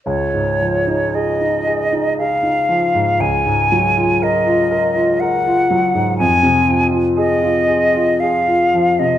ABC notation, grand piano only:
X:1
M:3/4
L:1/16
Q:1/4=58
K:Db
V:1 name="Grand piano"
D,, A,, F, E A E A E A E F, A,, | D,, A,, G, F B F B F B F G, A,, | F,, C, F, F A F A F A F F, C, |]